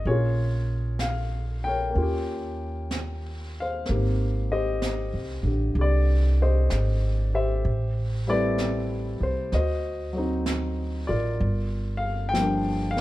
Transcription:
0.04 A#1 A#3 C#4 F4 G#4 C#5, brush sweep
0.11 F4
0.99 F5, brush sweep, snare, hi-hat pedal
1.64 A#4 C#5 G5
1.91 A#3 C#4, brush sweep
1.95 D#2 F4
2.02 G4
2.91 brush sweep, snare, hi-hat pedal
3.60 C5 F5
3.86 G#1 A#3 C4, brush sweep, snare
3.90 D#3 G4
4.52 G4 C5 D#5
4.82 brush sweep, snare, hi-hat pedal
5.13 C2
5.43 A1 D3 G4
5.75 C2 G4, brush sweep
5.81 D5
6.42 G4 C5 D#5
6.70 G#1, brush sweep, snare, hi-hat pedal
7.34 G4 C5 E5
7.64 A1, brush sweep
8.27 G3 A3 C4 E4 G4 B4 D5
8.58 brush sweep, snare, hi-hat pedal
9.20 C2 C5
9.52 D2 F#4 C5 D#5, brush sweep, snare
10.13 F#3 C4
10.18 D#4
10.46 brush sweep, snare, hi-hat pedal
11.07 A1 F4 A#4 D5
11.40 G1, brush sweep
11.97 F5
12.29 G5
12.33 F3 G3, brush sweep, snare, hi-hat pedal
12.38 A#3 D4
12.91 F5
12.97 A#4, snare

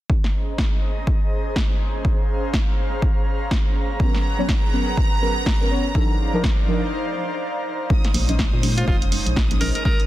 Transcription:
0.10 C#4 G#4 C5 D#5 A#5, kick
0.24 snare
0.58 kick, snare
1.07 kick
1.56 kick, snare
2.05 F5, kick
2.54 kick, snare
3.02 kick
3.51 kick, snare
3.99 F#3 B3 C#4 G#4 A#4 B4 F#5 A#5, kick
4.14 snare
4.38 F#3 B3 C#4 C#5
4.49 kick, snare
4.73 F#3 B3 C#4 A#4
4.97 kick
5.21 F#3 B3 C#4 A#4
5.46 kick, snare
5.60 F#3 B3 C#4 A#4
5.70 F#3 B3 C#4 C#5
5.95 F3 D4 D#4 A4 C5 D5 F5, kick
6.33 F3 D4 D#4 A#4
6.44 kick, snare
6.68 F3 D4 D#4 A#4
7.90 G#3 C#4 D#4 C5 D#6, kick
8.04 snare, closed hi-hat
8.14 A#1, open hi-hat, high conga
8.28 G#3 C#4 D#4 D#5, closed hi-hat, low conga
8.39 kick, snare
8.53 A#2
8.63 G#3 C#4 D#4 C5, open hi-hat, low conga
8.77 F4, closed hi-hat, high conga
8.88 F1 F4, kick
9.02 closed hi-hat
9.12 G#3 C#4 D#4 C5, open hi-hat
9.26 A#1, closed hi-hat
9.36 kick, snare
9.50 G#3 C#4 D#4 C5, closed hi-hat, high conga, low conga
9.60 A#1 G#3 C#4 D#4 A#4 D#5, open hi-hat
9.75 A#4, closed hi-hat
9.85 G#3 C#4 D#4 A#4, kick
10.00 closed hi-hat

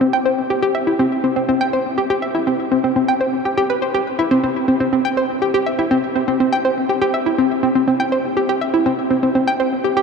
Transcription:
0.01 C4
0.13 G5
0.26 C5
0.50 G4
0.62 G4
0.75 E5
0.87 E4
0.99 C4
1.24 C4
1.36 C4
1.49 C4
1.61 G5
1.73 C5
1.98 G4
2.10 G4
2.22 E5
2.35 E4
2.47 C4
2.72 C4
2.84 C4
2.96 C4
3.08 G5
3.21 C5
3.45 G4
3.58 G4
3.70 B4
3.82 C5
3.94 G4
4.19 E4
4.31 C4
4.44 C4
4.68 C4
4.80 C4
4.93 C4
5.05 G5
5.17 C5
5.42 G4
5.54 G4
5.66 E5
5.79 E4
5.91 C4
6.16 C4
6.28 C4
6.40 C4
6.52 G5
6.65 C5
6.89 G4
7.02 G4
7.14 E5
7.26 E4
7.38 C4
7.63 C4
7.75 C4
7.88 C4
8.00 G5
8.12 C5
8.37 G4
8.49 G4
8.61 E5
8.74 E4
8.86 C4
9.11 C4
9.23 C4
9.35 C4
9.48 G5
9.60 C5
9.84 G4
9.97 G4

